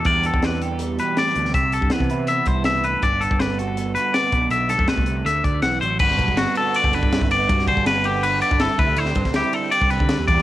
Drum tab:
CC |----------------|----------------|----------------|----------------|
RD |----------------|----------------|----------------|----------------|
HH |x-x-x-x-x-x-x-x-|x-x-x-x-x-x-x-x-|x-x-x-x-x-x-x-x-|x-x-x-x-x-x-x-x-|
SD |----o-------oo-o|----o-------o---|----o-------o---|----o-------o---|
BD |o--o------------|o--o-o----o-----|o--o----------o-|---o-o----o-----|

CC |x---------------|----------------|----------------|
RD |--x-x-x-x-x-x-x-|x-x-x-x-x-x-x-x-|x-x-x-x-x-x-x-x-|
HH |----------------|----------------|----------------|
SD |-o--o-------o---|-o--o-------o---|-o-oo-------o--o|
BD |o-oo-----o-o-o--|o-oo-------o--o-|--oo-----o-o--o-|